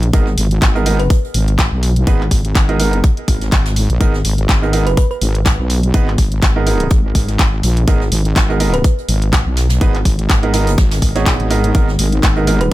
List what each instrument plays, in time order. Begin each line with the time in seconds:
Already playing: wobble bass A#1
0.03 closed hi-hat
0.13 wobble bass G#1, grand piano B3 D#4 G#4 A#4, kick, closed hi-hat
0.26 snare
0.37 wobble bass G#1, snare, closed hi-hat, open hi-hat
0.51 closed hi-hat
0.62 wobble bass G#1, kick, snare, clap, closed hi-hat
0.75 grand piano B3 D#4 G#4 A#4, closed hi-hat
0.86 grand piano B3 D#4 G#4 A#4, closed hi-hat, open hi-hat
1.00 synth pluck B4, closed hi-hat
1.10 kick, closed hi-hat
1.24 closed hi-hat
1.34 wobble bass G#1, closed hi-hat, open hi-hat
1.48 closed hi-hat
1.59 kick, snare, clap, closed hi-hat
1.72 wobble bass B1
1.83 closed hi-hat, open hi-hat
1.96 closed hi-hat
2.07 wobble bass G#1, grand piano B3 D#4 G#4 B4, kick, closed hi-hat
2.21 clap
2.31 wobble bass G#1, kick, snare, closed hi-hat, open hi-hat
2.45 closed hi-hat
2.55 wobble bass G#1, kick, snare, clap, closed hi-hat
2.69 grand piano B3 D#4 G#4 A#4, closed hi-hat
2.79 grand piano B3 D#4 G#4 A#4, closed hi-hat, open hi-hat
2.93 closed hi-hat
3.04 kick, closed hi-hat
3.17 closed hi-hat
3.28 wobble bass G#1, kick, closed hi-hat, open hi-hat
3.41 snare, closed hi-hat
3.52 wobble bass G#1, kick, snare, clap, closed hi-hat
3.65 snare, closed hi-hat
3.76 closed hi-hat, open hi-hat
3.90 wobble bass A#1, closed hi-hat
4.00 wobble bass G#1, grand piano B3 D#4 G#4 A#4, kick, closed hi-hat
4.14 snare
4.25 wobble bass G#1, snare, closed hi-hat, open hi-hat
4.38 closed hi-hat
4.49 wobble bass G#1, kick, snare, clap, closed hi-hat
4.62 grand piano B3 D#4 G#4 A#4, closed hi-hat
4.73 grand piano B3 D#4 G#4 A#4, closed hi-hat, open hi-hat
4.87 synth pluck B4, closed hi-hat
4.97 synth pluck B4, kick, closed hi-hat
5.10 synth pluck B4, closed hi-hat
5.21 wobble bass G#1, closed hi-hat, open hi-hat
5.35 closed hi-hat
5.45 kick, snare, clap, closed hi-hat
5.59 wobble bass B1
5.70 closed hi-hat, open hi-hat
5.83 closed hi-hat
5.94 wobble bass G#1, grand piano B3 D#4 G#4 B4, kick, closed hi-hat
6.08 clap
6.18 wobble bass G#1, kick, snare, closed hi-hat, open hi-hat
6.32 closed hi-hat
6.42 wobble bass G#1, kick, snare, clap, closed hi-hat
6.56 grand piano B3 D#4 G#4 A#4
6.67 grand piano B3 D#4 G#4 A#4, closed hi-hat, open hi-hat
6.80 closed hi-hat
6.90 wobble bass G#1, kick, closed hi-hat
7.15 wobble bass G#1, kick, closed hi-hat, open hi-hat
7.28 snare, closed hi-hat
7.39 wobble bass G#1, kick, snare, clap, closed hi-hat
7.63 wobble bass A#1, closed hi-hat, open hi-hat
7.77 closed hi-hat
7.87 wobble bass G#1, grand piano B3 D#4 G#4 A#4, kick, closed hi-hat
8.01 snare
8.12 wobble bass G#1, snare, closed hi-hat, open hi-hat
8.25 closed hi-hat
8.36 wobble bass G#1, kick, snare, clap, closed hi-hat
8.49 grand piano B3 D#4 G#4 A#4, closed hi-hat
8.60 grand piano B3 D#4 G#4 A#4, closed hi-hat, open hi-hat
8.74 synth pluck B4, closed hi-hat
8.84 kick, closed hi-hat
8.98 closed hi-hat
9.08 wobble bass G#1, closed hi-hat, open hi-hat
9.22 closed hi-hat
9.33 kick, snare, clap, closed hi-hat
9.46 wobble bass B1
9.57 snare, closed hi-hat, open hi-hat
9.69 snare, closed hi-hat
9.81 wobble bass G#1, grand piano B3 D#4 G#4 B4, kick, closed hi-hat
9.95 clap, closed hi-hat
10.05 wobble bass G#1, kick, snare, closed hi-hat, open hi-hat
10.19 closed hi-hat
10.29 wobble bass G#1, kick, snare, clap, closed hi-hat
10.43 grand piano B3 D#4 G#4 A#4, closed hi-hat
10.53 grand piano B3 D#4 G#4 A#4, snare, closed hi-hat, open hi-hat
10.67 closed hi-hat
10.78 wobble bass G#1, kick, snare, closed hi-hat
10.91 snare, closed hi-hat, open hi-hat
11.02 wobble bass G#1, kick, closed hi-hat, open hi-hat
11.15 grand piano B3 D#4 G#4 C#5, snare, closed hi-hat
11.26 wobble bass A#1, kick, snare, clap, closed hi-hat
11.40 wobble bass G#1, closed hi-hat
11.51 grand piano B3 D#4 G#4 A#4, closed hi-hat, open hi-hat
11.64 closed hi-hat
11.75 wobble bass G#1, analog synth pad G#3 B3 D#4 A#4, grand piano B3 D#4 G#4 A#4, kick, closed hi-hat
11.88 snare
11.98 wobble bass G#1, snare, closed hi-hat, open hi-hat
12.12 closed hi-hat
12.23 wobble bass G#1, kick, snare, clap, closed hi-hat
12.36 grand piano B3 D#4 G#4 A#4, closed hi-hat
12.47 grand piano B3 D#4 G#4 A#4, closed hi-hat, open hi-hat
12.61 synth pluck B4, closed hi-hat